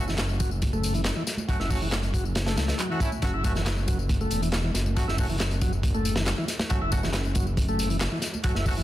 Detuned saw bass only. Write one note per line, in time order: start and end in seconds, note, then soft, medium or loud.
0.00 1.12 F#1 medium
1.49 1.58 F#1 soft
1.60 2.57 F#1 medium
2.57 2.74 C#2 medium
3.23 4.27 F#1 loud
4.31 4.70 E1 loud
4.75 5.03 F#1 loud
5.08 6.33 F#1 medium
6.71 6.79 F#1 soft
6.81 8.07 F#1 medium
8.44 8.53 F#1 soft
8.55 8.83 F#1 medium